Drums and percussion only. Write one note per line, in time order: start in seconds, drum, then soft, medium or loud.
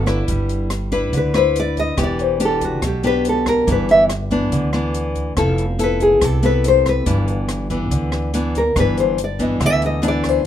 0.07 kick soft
0.07 cross-stick medium
0.07 closed hi-hat soft
0.28 kick medium
0.28 closed hi-hat soft
0.49 closed hi-hat soft
0.70 cross-stick medium
0.70 closed hi-hat soft
0.92 kick soft
0.92 closed hi-hat soft
1.13 kick medium
1.13 closed hi-hat soft
1.34 cross-stick medium
1.34 closed hi-hat soft
1.56 closed hi-hat soft
1.77 kick soft
1.77 closed hi-hat soft
1.98 kick medium
1.98 cross-stick medium
1.98 closed hi-hat soft
2.19 closed hi-hat soft
2.40 closed hi-hat soft
2.61 kick soft
2.61 closed hi-hat soft
2.82 kick medium
2.82 cross-stick medium
2.82 closed hi-hat soft
3.03 closed hi-hat soft
3.25 closed hi-hat soft
3.46 kick soft
3.46 cross-stick medium
3.46 closed hi-hat soft
3.67 kick medium
3.67 closed hi-hat soft
3.89 closed hi-hat soft
4.10 cross-stick medium
4.10 closed hi-hat soft
4.31 kick soft
4.31 closed hi-hat soft
4.52 kick medium
4.52 closed hi-hat soft
4.73 cross-stick medium
4.73 closed hi-hat soft
4.94 closed hi-hat soft
5.15 kick soft
5.15 closed hi-hat soft
5.37 kick medium
5.37 cross-stick medium
5.37 closed hi-hat soft
5.58 closed hi-hat soft
5.79 closed hi-hat soft
6.00 kick soft
6.00 closed hi-hat soft
6.21 kick medium
6.21 cross-stick medium
6.21 closed hi-hat soft
6.43 closed hi-hat soft
6.64 closed hi-hat soft
6.85 kick soft
6.85 cross-stick medium
6.85 closed hi-hat soft
7.06 kick medium
7.06 closed hi-hat soft
7.28 closed hi-hat soft
7.49 cross-stick medium
7.49 closed hi-hat soft
7.70 kick soft
7.70 closed hi-hat soft
7.91 kick medium
7.91 closed hi-hat soft
8.12 cross-stick medium
8.12 closed hi-hat soft
8.34 closed hi-hat soft
8.55 kick soft
8.55 closed hi-hat soft
8.76 kick medium
8.76 cross-stick medium
8.76 closed hi-hat soft
8.97 closed hi-hat soft
9.18 closed hi-hat soft
9.39 kick soft
9.39 closed hi-hat soft
9.61 kick medium
9.61 cross-stick medium
9.61 closed hi-hat soft
9.82 closed hi-hat soft
10.03 closed hi-hat soft
10.24 kick soft
10.24 cross-stick medium
10.24 closed hi-hat soft